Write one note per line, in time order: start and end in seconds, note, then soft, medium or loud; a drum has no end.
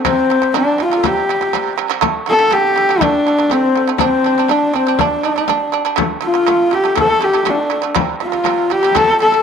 0.03 0.24 C3 loud
0.03 0.25 G3 loud
0.03 0.52 C4 medium
0.03 0.56 C5 medium
0.03 frame drum medium
0.30 0.39 C3 medium
0.30 0.40 G3 medium
0.42 0.51 C3 medium
0.42 0.52 G3 medium
0.42 frame drum soft
0.54 0.74 C3 medium
0.54 0.74 G3 loud
0.54 0.77 D4 medium
0.54 0.83 D4 medium
0.54 frame drum medium
0.78 0.88 C3 medium
0.78 0.89 G3 medium
0.78 0.98 F4 medium
0.78 1.07 F4 medium
0.78 frame drum soft
0.91 1.01 C3 medium
0.91 1.02 G3 medium
0.96 1.07 A4 medium
1.03 1.23 C3 loud
1.03 1.24 G3 loud
1.03 1.78 G4 medium
1.03 1.79 G4 medium
1.03 frame drum medium
1.29 1.38 C3 medium
1.29 1.39 G3 medium
1.41 1.50 C3 medium
1.41 1.51 G3 medium
1.41 frame drum soft
1.53 1.73 C3 medium
1.53 1.74 G3 loud
1.53 frame drum medium
1.78 1.87 C3 medium
1.78 1.88 G3 medium
1.90 2.00 C3 medium
1.90 2.00 G3 loud
2.01 2.21 D3 loud
2.01 2.22 A3 loud
2.01 frame drum medium
2.26 2.36 D3 medium
2.26 2.37 A3 medium
2.26 2.52 A4 medium
2.26 2.55 A4 loud
2.39 2.49 D3 medium
2.39 2.50 A3 medium
2.39 frame drum soft
2.51 2.71 D3 loud
2.51 2.72 A3 loud
2.51 3.01 G4 medium
2.51 3.03 G4 loud
2.51 frame drum medium
2.76 2.86 D3 medium
2.76 2.87 A3 medium
2.76 frame drum soft
2.89 2.99 D3 medium
2.89 3.00 A3 medium
3.00 3.21 D3 loud
3.00 3.21 A3 loud
3.00 3.52 D4 medium
3.00 3.53 D4 loud
3.00 frame drum medium
3.27 3.36 D3 medium
3.27 3.37 A3 medium
3.38 3.48 D3 medium
3.38 3.49 A3 medium
3.38 frame drum soft
3.50 3.71 D3 medium
3.50 3.72 A3 loud
3.50 3.88 C4 medium
3.50 3.88 C5 medium
3.50 frame drum medium
3.75 3.85 D3 medium
3.75 3.86 A3 medium
3.88 3.98 D3 medium
3.88 3.98 A3 medium
3.98 4.20 G3 medium
3.98 4.51 C4 medium
3.98 4.20 D4 loud
3.98 4.51 C5 loud
3.98 frame drum medium
4.24 4.35 G3 medium
4.24 4.35 D4 medium
4.36 4.48 G3 medium
4.36 4.48 D4 medium
4.36 frame drum soft
4.48 4.69 G3 loud
4.48 4.75 D4 medium
4.48 4.70 D4 loud
4.48 frame drum medium
4.74 4.84 G3 medium
4.74 5.00 C4 medium
4.74 4.85 D4 medium
4.74 5.02 C5 medium
4.74 frame drum soft
4.87 4.97 G3 medium
4.87 4.98 D4 medium
4.98 5.19 G3 medium
4.98 5.73 D4 medium
4.98 5.74 D4 medium
4.98 5.20 D4 loud
4.98 frame drum medium
5.23 5.34 G3 medium
5.23 5.34 D4 medium
5.36 5.46 G3 medium
5.36 5.47 D4 medium
5.36 frame drum soft
5.48 5.68 G3 medium
5.48 5.69 D4 loud
5.48 frame drum medium
5.72 5.83 G3 medium
5.72 5.84 D4 medium
5.85 5.95 G3 medium
5.85 5.96 D4 medium
5.96 6.17 D3 loud
5.96 6.18 A3 loud
5.96 frame drum medium
6.21 6.32 D3 medium
6.21 6.33 A3 medium
6.21 6.73 F4 medium
6.21 6.75 F4 medium
6.34 6.45 D3 medium
6.34 6.45 A3 medium
6.46 6.67 D3 medium
6.46 6.68 A3 loud
6.46 frame drum medium
6.71 6.82 D3 medium
6.71 6.83 A3 medium
6.71 6.97 G4 medium
6.71 6.98 G4 medium
6.71 frame drum soft
6.84 6.94 D3 medium
6.84 6.95 A3 medium
6.95 7.16 D3 loud
6.95 7.17 A3 loud
6.95 7.03 A4 medium
6.95 7.25 A4 loud
6.95 frame drum medium
7.01 7.08 C5 medium
7.07 7.21 A4 loud
7.19 7.31 D3 medium
7.19 7.32 A3 medium
7.19 7.47 G4 medium
7.24 7.51 G4 medium
7.33 7.44 D3 medium
7.33 7.45 A3 medium
7.33 frame drum soft
7.45 7.66 D3 medium
7.45 7.67 A3 loud
7.45 7.83 D4 medium
7.45 frame drum medium
7.49 7.86 D4 medium
7.70 7.81 D3 medium
7.70 7.82 A3 medium
7.82 7.93 D3 medium
7.82 7.94 A3 medium
7.95 8.16 C3 loud
7.95 8.16 G3 loud
7.95 frame drum medium
8.20 8.31 C3 medium
8.20 8.31 G3 medium
8.20 8.74 F4 medium
8.20 8.73 F4 medium
8.32 8.43 C3 medium
8.32 8.44 G3 medium
8.32 frame drum soft
8.44 8.65 C3 medium
8.44 8.66 G3 loud
8.44 frame drum medium
8.70 8.81 C3 medium
8.70 8.81 G3 medium
8.70 8.97 G4 loud
8.70 8.98 G4 medium
8.70 frame drum soft
8.83 8.93 C3 medium
8.83 8.94 G3 medium
8.95 9.15 C3 loud
8.95 9.16 G3 loud
8.95 9.21 A4 loud
8.95 9.20 A4 medium
8.95 frame drum medium
9.20 9.30 C3 medium
9.20 9.31 G3 medium
9.20 9.43 A4 medium
9.32 9.43 C3 medium
9.32 9.43 G3 medium
9.32 frame drum soft